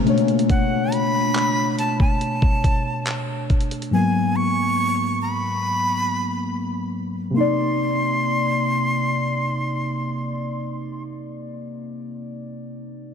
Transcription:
0.00 0.10 C#4 soft
0.04 3.45 B2 medium
0.04 3.45 A3 medium
0.04 3.46 D4 medium
0.04 closed hi-hat soft
0.09 3.47 C#5 medium
0.18 closed hi-hat medium
0.28 closed hi-hat medium
0.39 closed hi-hat medium
0.50 0.95 F#5 loud
0.50 kick loud
0.50 closed hi-hat medium
0.92 1.78 B5 loud
0.92 closed hi-hat medium
1.35 clap loud
1.35 closed hi-hat medium
1.79 1.99 A5 loud
1.79 closed hi-hat medium
2.00 3.46 A5 loud
2.00 kick loud
2.21 closed hi-hat medium
2.42 kick loud
2.64 kick medium
2.64 closed hi-hat medium
3.07 clap loud
3.07 closed hi-hat medium
3.50 kick medium
3.50 closed hi-hat soft
3.61 closed hi-hat medium
3.71 closed hi-hat medium
3.82 closed hi-hat medium
3.90 7.30 G#2 medium
3.90 7.31 F#3 medium
3.90 7.32 B3 medium
3.90 4.38 G#5 loud
3.95 7.33 A#3 medium
4.36 5.21 C#6 loud
5.22 6.89 B5 loud
7.30 10.97 C3 medium
7.30 11.00 A#3 medium
7.36 11.03 D#4 medium
7.36 11.02 C6 loud
7.40 11.07 D5 medium

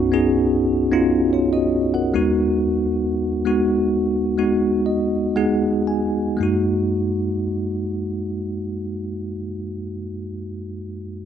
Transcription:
0.00 2.12 B1 medium
0.00 2.12 F#2 medium
0.00 0.12 B3 medium
0.00 0.13 C#4 medium
0.00 0.13 D#4 medium
0.00 1.53 F#4 loud
0.12 0.88 B3 medium
0.12 0.89 C#4 medium
0.12 0.89 D#4 medium
0.12 0.89 G#4 medium
0.92 1.70 B3 medium
0.92 1.70 C#4 medium
0.92 1.70 D#4 medium
0.92 1.33 F4 medium
1.33 1.53 F4 soft
1.33 1.53 C#5 soft
1.53 1.93 F#4 soft
1.53 1.93 D#5 soft
1.94 2.35 A#4 soft
1.94 2.35 F#5 soft
2.14 5.82 D#2 medium
2.14 3.38 G#3 medium
2.14 3.39 B3 medium
2.14 3.39 D#4 medium
2.14 3.39 F#4 medium
3.45 4.33 G#3 medium
3.45 4.33 B3 medium
3.45 4.34 D#4 medium
3.45 4.34 F#4 medium
4.38 5.30 G#3 medium
4.38 5.31 B3 medium
4.38 5.31 D#4 medium
4.38 5.31 F#4 medium
4.86 5.32 D#5 soft
5.36 6.34 G#3 medium
5.36 6.35 B3 medium
5.36 6.35 D#4 medium
5.36 6.35 G#4 medium
5.36 5.83 F#5 soft
5.87 6.36 G#5 soft
6.37 9.36 F#2 medium
6.37 9.33 G#3 medium
6.37 9.35 A#3 medium
6.41 9.37 D#4 soft
6.41 9.39 F#4 medium

